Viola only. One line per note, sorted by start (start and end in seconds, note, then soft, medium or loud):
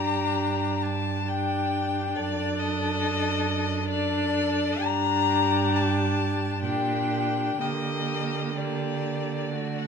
0.00 1.23 D4 soft
1.27 2.13 D4 soft
2.14 3.83 D4 soft
3.85 4.80 D4 soft
4.82 6.58 D4 soft
6.63 7.60 D4 soft
7.59 8.56 A#3 soft
8.57 9.54 A#3 soft
9.53 9.87 A3 soft